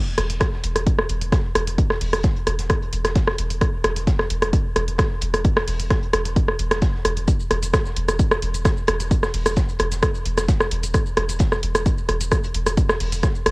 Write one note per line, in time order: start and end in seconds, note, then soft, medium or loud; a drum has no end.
0.18 0.29 E1 medium
0.18 cross-stick medium
0.18 closed hi-hat medium
0.18 open hi-hat loud
0.30 0.41 E1 medium
0.30 closed hi-hat medium
0.30 closed hi-hat soft
0.40 kick loud
0.40 cross-stick medium
0.40 snare loud
0.40 closed hi-hat medium
0.53 snare soft
0.64 0.75 E1 medium
0.64 closed hi-hat medium
0.64 open hi-hat loud
0.76 0.86 E1 medium
0.76 cross-stick medium
0.76 closed hi-hat medium
0.87 kick loud
0.87 closed hi-hat medium
0.99 cross-stick medium
1.09 1.21 E1 loud
1.09 closed hi-hat medium
1.09 open hi-hat loud
1.22 1.32 E1 medium
1.22 closed hi-hat medium
1.32 kick loud
1.32 cross-stick medium
1.32 snare loud
1.32 closed hi-hat medium
1.55 1.67 E1 loud
1.55 cross-stick medium
1.55 closed hi-hat medium
1.55 open hi-hat loud
1.67 1.78 E1 medium
1.67 closed hi-hat medium
1.78 kick loud
1.78 closed hi-hat medium
1.90 cross-stick medium
1.90 snare medium
2.01 2.12 E1 medium
2.01 open hi-hat loud
2.01 open hi-hat medium
2.13 2.24 E1 medium
2.13 cross-stick medium
2.13 closed hi-hat medium
2.23 kick loud
2.23 snare loud
2.23 closed hi-hat medium
2.36 closed hi-hat soft
2.47 2.58 E1 loud
2.47 cross-stick medium
2.47 closed hi-hat medium
2.47 open hi-hat loud
2.59 2.70 E1 medium
2.59 snare soft
2.59 closed hi-hat medium
2.69 kick loud
2.69 cross-stick medium
2.69 closed hi-hat medium
2.82 closed hi-hat soft
2.93 3.04 E1 loud
2.93 closed hi-hat medium
2.93 open hi-hat loud
3.05 3.15 E1 medium
3.05 cross-stick medium
3.05 snare medium
3.05 closed hi-hat medium
3.15 kick loud
3.15 snare loud
3.15 closed hi-hat medium
3.28 cross-stick medium
3.28 snare soft
3.38 3.50 E1 loud
3.38 closed hi-hat medium
3.38 open hi-hat loud
3.50 3.61 E1 medium
3.50 closed hi-hat medium
3.50 closed hi-hat soft
3.61 kick loud
3.61 cross-stick medium
3.61 closed hi-hat medium
3.84 3.96 E1 medium
3.84 cross-stick medium
3.84 closed hi-hat medium
3.84 open hi-hat loud
3.96 4.07 E1 medium
3.96 closed hi-hat medium
3.96 closed hi-hat soft
4.07 kick loud
4.07 snare loud
4.07 closed hi-hat medium
4.19 cross-stick medium
4.19 snare soft
4.30 4.41 E1 medium
4.30 closed hi-hat medium
4.30 open hi-hat loud
4.42 4.53 E1 medium
4.42 cross-stick medium
4.42 closed hi-hat medium
4.53 kick loud
4.53 closed hi-hat medium
4.76 4.87 E1 loud
4.76 cross-stick medium
4.76 closed hi-hat medium
4.76 open hi-hat loud
4.88 4.99 E1 medium
4.88 closed hi-hat medium
4.98 kick loud
4.98 cross-stick medium
4.98 snare loud
4.98 closed hi-hat medium
5.21 5.33 E1 loud
5.21 closed hi-hat medium
5.21 open hi-hat loud
5.34 5.44 E1 medium
5.34 cross-stick medium
5.34 closed hi-hat medium
5.44 kick loud
5.44 closed hi-hat medium
5.56 cross-stick loud
5.56 snare medium
5.67 5.79 E1 medium
5.67 open hi-hat loud
5.67 open hi-hat medium
5.79 5.90 E1 medium
5.79 closed hi-hat medium
5.90 kick loud
5.90 cross-stick medium
5.90 snare loud
5.90 closed hi-hat medium
6.03 closed hi-hat soft
6.13 6.25 E1 loud
6.13 cross-stick loud
6.13 closed hi-hat medium
6.13 open hi-hat loud
6.25 6.36 E1 medium
6.25 closed hi-hat medium
6.36 kick loud
6.36 closed hi-hat medium
6.48 cross-stick medium
6.59 6.70 E1 loud
6.59 closed hi-hat medium
6.59 open hi-hat loud
6.71 6.82 E1 medium
6.71 cross-stick loud
6.71 snare medium
6.71 closed hi-hat medium
6.82 kick loud
6.82 snare loud
6.82 closed hi-hat medium
6.95 snare soft
7.05 7.16 E1 loud
7.05 cross-stick medium
7.05 closed hi-hat medium
7.05 open hi-hat loud
7.17 7.28 E1 medium
7.17 closed hi-hat soft
7.17 closed hi-hat medium
7.28 kick loud
7.28 closed hi-hat medium
7.28 shaker medium
7.40 shaker soft
7.51 7.62 E1 loud
7.51 cross-stick medium
7.51 closed hi-hat medium
7.51 open hi-hat loud
7.63 7.73 E1 medium
7.63 closed hi-hat medium
7.63 closed hi-hat soft
7.63 shaker medium
7.74 kick loud
7.74 cross-stick medium
7.74 snare loud
7.74 closed hi-hat medium
7.74 shaker medium
7.86 snare soft
7.86 shaker soft
7.96 8.08 E1 loud
7.96 closed hi-hat medium
7.96 open hi-hat loud
8.08 8.19 E1 medium
8.08 cross-stick medium
8.08 closed hi-hat medium
8.08 shaker medium
8.19 kick loud
8.19 closed hi-hat medium
8.19 shaker medium
8.31 cross-stick medium
8.31 shaker soft
8.42 8.54 E1 loud
8.42 closed hi-hat medium
8.42 open hi-hat loud
8.54 8.65 E1 medium
8.54 closed hi-hat medium
8.54 shaker medium
8.65 kick loud
8.65 cross-stick medium
8.65 snare loud
8.65 closed hi-hat medium
8.65 shaker medium
8.77 shaker soft
8.87 8.99 E1 loud
8.87 cross-stick loud
8.87 closed hi-hat medium
8.87 open hi-hat loud
9.00 9.11 E1 medium
9.00 closed hi-hat medium
9.00 shaker medium
9.11 kick loud
9.11 closed hi-hat medium
9.11 shaker medium
9.23 cross-stick medium
9.23 snare medium
9.23 shaker soft
9.34 9.45 E1 medium
9.34 open hi-hat medium
9.34 open hi-hat loud
9.46 9.57 E1 medium
9.46 cross-stick medium
9.46 closed hi-hat medium
9.46 shaker medium
9.56 kick loud
9.56 snare loud
9.56 closed hi-hat medium
9.56 shaker medium
9.69 closed hi-hat soft
9.69 shaker soft
9.79 9.91 E1 loud
9.79 cross-stick medium
9.79 closed hi-hat medium
9.79 open hi-hat loud
9.92 10.02 E1 medium
9.92 snare soft
9.92 closed hi-hat medium
9.92 shaker medium
10.03 kick loud
10.03 cross-stick loud
10.03 closed hi-hat medium
10.03 shaker medium
10.15 closed hi-hat soft
10.15 shaker soft
10.25 10.37 E1 loud
10.25 closed hi-hat medium
10.25 open hi-hat loud
10.37 10.48 E1 medium
10.37 cross-stick medium
10.37 snare medium
10.37 closed hi-hat medium
10.37 shaker medium
10.48 kick loud
10.48 snare loud
10.48 closed hi-hat medium
10.48 shaker medium
10.60 cross-stick medium
10.60 snare soft
10.60 shaker soft
10.71 10.83 E1 loud
10.71 closed hi-hat medium
10.71 open hi-hat loud
10.83 10.94 E1 medium
10.83 closed hi-hat soft
10.83 closed hi-hat medium
10.83 shaker medium
10.94 kick loud
10.94 cross-stick medium
10.94 closed hi-hat medium
10.94 shaker medium
11.06 shaker soft
11.17 11.28 E1 loud
11.17 cross-stick medium
11.17 closed hi-hat medium
11.17 open hi-hat loud
11.29 11.40 E1 medium
11.29 closed hi-hat medium
11.29 closed hi-hat soft
11.29 shaker medium
11.39 kick loud
11.39 snare loud
11.39 closed hi-hat medium
11.39 shaker medium
11.52 cross-stick medium
11.52 snare soft
11.52 shaker soft
11.63 11.74 E1 loud
11.63 closed hi-hat medium
11.63 open hi-hat loud
11.75 11.86 E1 medium
11.75 cross-stick medium
11.75 closed hi-hat medium
11.75 shaker medium
11.86 kick loud
11.86 closed hi-hat medium
11.86 shaker medium
11.98 shaker soft
12.08 12.20 E1 loud
12.08 cross-stick medium
12.08 closed hi-hat medium
12.08 open hi-hat loud
12.21 12.31 E1 medium
12.21 closed hi-hat medium
12.21 shaker medium
12.32 kick loud
12.32 cross-stick medium
12.32 closed hi-hat medium
12.32 shaker medium
12.44 closed hi-hat medium
12.44 shaker soft
12.54 12.66 E1 loud
12.54 open hi-hat loud
12.66 12.77 E1 medium
12.66 cross-stick medium
12.66 closed hi-hat medium
12.66 shaker medium
12.77 kick loud
12.77 closed hi-hat medium
12.77 shaker medium
12.89 cross-stick medium
12.89 snare medium
12.89 shaker soft
13.00 13.12 E1 medium
13.00 open hi-hat loud
13.00 open hi-hat medium
13.12 13.23 E1 medium
13.12 closed hi-hat medium
13.12 shaker medium
13.23 kick loud
13.23 cross-stick medium
13.23 snare loud
13.23 closed hi-hat medium
13.23 shaker medium
13.35 closed hi-hat soft
13.35 shaker soft
13.46 13.51 E1 loud
13.46 cross-stick medium
13.46 closed hi-hat medium
13.46 open hi-hat loud